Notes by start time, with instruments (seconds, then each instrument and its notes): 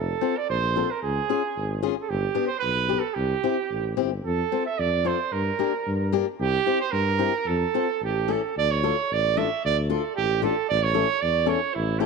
Already playing: tuba F1, trumpet A4
0.21 steel-string acoustic guitar C4 F4 A4
0.37 trumpet D5
0.49 tuba A#1, trumpet C5
0.76 steel-string acoustic guitar C4 F4 A4
0.91 trumpet A#4
1.02 tuba C#2, trumpet G#4
1.29 steel-string acoustic guitar C#4 F4 G#4
1.56 tuba G#1
1.83 steel-string acoustic guitar C#4 F4 G#4
2.02 trumpet A4
2.09 tuba G1, trumpet G4
2.35 steel-string acoustic guitar B3 D4 G4
2.47 trumpet C5
2.59 tuba B1, trumpet B4
2.89 steel-string acoustic guitar B3 D4 G4
2.99 trumpet A4
3.14 tuba C2, trumpet G4
3.44 steel-string acoustic guitar C4 E4 G4
3.70 tuba A1
3.97 tuba G1, steel-string acoustic guitar C4 E4 G4
4.24 tuba F2, trumpet A4
4.52 steel-string acoustic guitar C4 F4 A4
4.66 trumpet E5
4.79 tuba F2, trumpet D5
5.05 steel-string acoustic guitar C4 F4 A4, trumpet C5
5.32 tuba G2, trumpet A#4
5.59 steel-string acoustic guitar A#3 D4 G4
5.87 tuba G2
6.13 steel-string acoustic guitar A#3 D4 G4
6.39 tuba C2, trumpet G4
6.66 steel-string acoustic guitar C4 E4 G4
6.80 trumpet C5
6.91 tuba G2, trumpet A#4
7.19 steel-string acoustic guitar C4 E4 G4
7.46 tuba F2, trumpet A4
7.74 steel-string acoustic guitar C4 F4 A4
8.01 tuba A1, trumpet G4
8.28 steel-string acoustic guitar C#4 E4 A4, trumpet A4
8.57 tuba D2, trumpet D5
8.71 trumpet C#5
8.83 steel-string acoustic guitar D4 F4 A4
9.10 tuba A1, trumpet D5
9.37 steel-string acoustic guitar D4 F4 A4, trumpet E5
9.64 tuba D2, trumpet D5
9.90 steel-string acoustic guitar D4 F4 A4, trumpet A4
10.16 tuba A1, trumpet G4
10.42 steel-string acoustic guitar D4 F4 A4, trumpet A4
10.69 tuba A1, trumpet D5
10.83 trumpet C#5
10.94 steel-string acoustic guitar C#4 E4 A4
11.21 tuba E2, trumpet D5
11.46 steel-string acoustic guitar C#4 E4 A4, trumpet C#5
11.74 tuba A1, trumpet E4
12.00 steel-string acoustic guitar C#4 E4 A4, trumpet G4